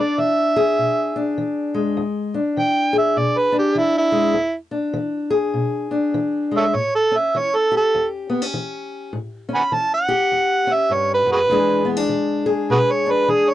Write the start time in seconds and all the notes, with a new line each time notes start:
Already playing: E2 D4
0.00 D5
0.18 E3 E5
0.56 G#4
0.78 B2
1.16 D4
1.38 E3
1.74 G#3
1.97 E2
2.34 D4
2.57 E3 G5
2.93 G#4
2.98 E5
3.17 B2 D5
3.38 B4
3.52 D4
3.59 G4
3.75 E3 E4
3.98 E4
4.12 G#3
4.34 E2
4.71 D4
4.93 E3
5.30 G#4
5.54 B2
5.91 D4
6.14 E3
6.51 G#3
6.57 A4 C#5 E5
6.74 A2 C#5
6.95 A4
7.11 C#4
7.17 E5
7.35 E3 C#5
7.55 A4
7.72 G4
7.77 A4
7.94 E2
8.30 B3
8.42 C#4
8.54 E3
9.13 A2
9.49 C#4
9.55 F#5 G#5 B5
9.72 E3 A5
9.94 F#5
10.08 G4
10.32 E2
10.67 C#4
10.73 E5
10.90 G2 C#5
11.14 B4
11.26 F#2
11.32 F#4 G#4 B4
11.50 E2 E3 G#3 D4 G#4
11.85 B3
11.97 D4
12.09 E3
12.46 G#4
12.70 B2 F#4 G#4 B4
12.91 C#5
13.06 D4
13.11 B4
13.28 E3 G#4
13.50 C#5